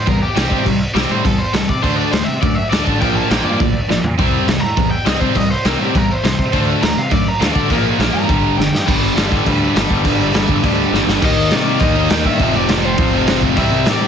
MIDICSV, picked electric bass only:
0, 0, Header, 1, 2, 480
1, 0, Start_track
1, 0, Tempo, 293542
1, 1081, Time_signature, 4, 2, 24, 8
1, 23017, End_track
2, 0, Start_track
2, 0, Title_t, "Picked electric bass"
2, 0, Program_c, 0, 34
2, 124, Note_on_c, 0, 40, 87
2, 441, Note_off_c, 0, 40, 0
2, 608, Note_on_c, 0, 36, 79
2, 764, Note_off_c, 0, 36, 0
2, 839, Note_on_c, 0, 48, 82
2, 998, Note_off_c, 0, 48, 0
2, 1080, Note_on_c, 0, 36, 98
2, 1399, Note_off_c, 0, 36, 0
2, 1546, Note_on_c, 0, 36, 93
2, 1710, Note_off_c, 0, 36, 0
2, 1810, Note_on_c, 0, 45, 85
2, 1966, Note_off_c, 0, 45, 0
2, 2044, Note_on_c, 0, 40, 94
2, 2361, Note_off_c, 0, 40, 0
2, 2518, Note_on_c, 0, 36, 83
2, 2678, Note_off_c, 0, 36, 0
2, 2769, Note_on_c, 0, 48, 86
2, 2926, Note_off_c, 0, 48, 0
2, 3000, Note_on_c, 0, 38, 100
2, 3319, Note_off_c, 0, 38, 0
2, 3476, Note_on_c, 0, 38, 94
2, 3637, Note_off_c, 0, 38, 0
2, 3720, Note_on_c, 0, 48, 90
2, 3880, Note_off_c, 0, 48, 0
2, 3964, Note_on_c, 0, 42, 99
2, 4282, Note_off_c, 0, 42, 0
2, 4450, Note_on_c, 0, 38, 84
2, 4607, Note_off_c, 0, 38, 0
2, 4692, Note_on_c, 0, 33, 90
2, 4848, Note_off_c, 0, 33, 0
2, 4931, Note_on_c, 0, 34, 101
2, 5247, Note_off_c, 0, 34, 0
2, 5403, Note_on_c, 0, 34, 92
2, 5562, Note_off_c, 0, 34, 0
2, 5641, Note_on_c, 0, 43, 84
2, 5801, Note_off_c, 0, 43, 0
2, 5891, Note_on_c, 0, 38, 93
2, 6207, Note_off_c, 0, 38, 0
2, 6352, Note_on_c, 0, 34, 80
2, 6515, Note_off_c, 0, 34, 0
2, 6599, Note_on_c, 0, 46, 88
2, 6760, Note_off_c, 0, 46, 0
2, 6849, Note_on_c, 0, 36, 95
2, 7165, Note_off_c, 0, 36, 0
2, 7319, Note_on_c, 0, 36, 94
2, 7479, Note_off_c, 0, 36, 0
2, 7576, Note_on_c, 0, 45, 85
2, 7731, Note_off_c, 0, 45, 0
2, 7807, Note_on_c, 0, 40, 91
2, 8124, Note_off_c, 0, 40, 0
2, 8286, Note_on_c, 0, 36, 91
2, 8444, Note_off_c, 0, 36, 0
2, 8521, Note_on_c, 0, 48, 88
2, 8680, Note_off_c, 0, 48, 0
2, 8759, Note_on_c, 0, 36, 95
2, 9078, Note_off_c, 0, 36, 0
2, 9237, Note_on_c, 0, 36, 93
2, 9398, Note_off_c, 0, 36, 0
2, 9481, Note_on_c, 0, 45, 84
2, 9640, Note_off_c, 0, 45, 0
2, 9729, Note_on_c, 0, 40, 95
2, 10044, Note_off_c, 0, 40, 0
2, 10193, Note_on_c, 0, 36, 87
2, 10354, Note_off_c, 0, 36, 0
2, 10440, Note_on_c, 0, 48, 94
2, 10599, Note_off_c, 0, 48, 0
2, 10682, Note_on_c, 0, 38, 104
2, 10999, Note_off_c, 0, 38, 0
2, 11164, Note_on_c, 0, 38, 97
2, 11321, Note_off_c, 0, 38, 0
2, 11398, Note_on_c, 0, 48, 90
2, 11557, Note_off_c, 0, 48, 0
2, 11639, Note_on_c, 0, 42, 98
2, 11956, Note_off_c, 0, 42, 0
2, 12116, Note_on_c, 0, 38, 94
2, 12276, Note_off_c, 0, 38, 0
2, 12353, Note_on_c, 0, 50, 94
2, 12594, Note_on_c, 0, 34, 104
2, 12618, Note_off_c, 0, 50, 0
2, 12913, Note_off_c, 0, 34, 0
2, 13064, Note_on_c, 0, 34, 94
2, 13227, Note_off_c, 0, 34, 0
2, 13316, Note_on_c, 0, 43, 91
2, 13475, Note_off_c, 0, 43, 0
2, 13560, Note_on_c, 0, 31, 101
2, 13877, Note_off_c, 0, 31, 0
2, 14038, Note_on_c, 0, 31, 87
2, 14196, Note_off_c, 0, 31, 0
2, 14268, Note_on_c, 0, 43, 94
2, 14430, Note_off_c, 0, 43, 0
2, 14523, Note_on_c, 0, 31, 99
2, 14686, Note_off_c, 0, 31, 0
2, 14750, Note_on_c, 0, 31, 90
2, 14918, Note_off_c, 0, 31, 0
2, 14992, Note_on_c, 0, 31, 93
2, 15159, Note_off_c, 0, 31, 0
2, 15236, Note_on_c, 0, 31, 90
2, 15401, Note_off_c, 0, 31, 0
2, 15479, Note_on_c, 0, 38, 96
2, 15809, Note_off_c, 0, 38, 0
2, 15955, Note_on_c, 0, 31, 89
2, 16120, Note_off_c, 0, 31, 0
2, 16198, Note_on_c, 0, 31, 91
2, 16362, Note_off_c, 0, 31, 0
2, 16436, Note_on_c, 0, 31, 104
2, 16601, Note_off_c, 0, 31, 0
2, 16669, Note_on_c, 0, 31, 93
2, 16836, Note_off_c, 0, 31, 0
2, 16906, Note_on_c, 0, 31, 93
2, 17074, Note_off_c, 0, 31, 0
2, 17147, Note_on_c, 0, 31, 97
2, 17315, Note_off_c, 0, 31, 0
2, 17389, Note_on_c, 0, 38, 97
2, 17722, Note_off_c, 0, 38, 0
2, 17857, Note_on_c, 0, 31, 91
2, 18028, Note_off_c, 0, 31, 0
2, 18113, Note_on_c, 0, 31, 94
2, 18279, Note_off_c, 0, 31, 0
2, 18352, Note_on_c, 0, 39, 104
2, 18559, Note_off_c, 0, 39, 0
2, 18587, Note_on_c, 0, 39, 93
2, 18796, Note_off_c, 0, 39, 0
2, 18838, Note_on_c, 0, 48, 93
2, 19250, Note_off_c, 0, 48, 0
2, 19308, Note_on_c, 0, 39, 99
2, 19724, Note_off_c, 0, 39, 0
2, 19788, Note_on_c, 0, 39, 93
2, 19997, Note_off_c, 0, 39, 0
2, 20033, Note_on_c, 0, 43, 99
2, 20240, Note_off_c, 0, 43, 0
2, 20271, Note_on_c, 0, 29, 106
2, 20479, Note_off_c, 0, 29, 0
2, 20518, Note_on_c, 0, 29, 88
2, 20723, Note_off_c, 0, 29, 0
2, 20748, Note_on_c, 0, 29, 98
2, 21165, Note_off_c, 0, 29, 0
2, 21228, Note_on_c, 0, 29, 99
2, 21437, Note_off_c, 0, 29, 0
2, 21455, Note_on_c, 0, 29, 102
2, 21670, Note_off_c, 0, 29, 0
2, 21706, Note_on_c, 0, 29, 89
2, 21916, Note_off_c, 0, 29, 0
2, 21956, Note_on_c, 0, 29, 96
2, 22162, Note_off_c, 0, 29, 0
2, 22190, Note_on_c, 0, 36, 104
2, 22399, Note_off_c, 0, 36, 0
2, 22428, Note_on_c, 0, 36, 85
2, 22638, Note_off_c, 0, 36, 0
2, 22675, Note_on_c, 0, 45, 102
2, 23017, Note_off_c, 0, 45, 0
2, 23017, End_track
0, 0, End_of_file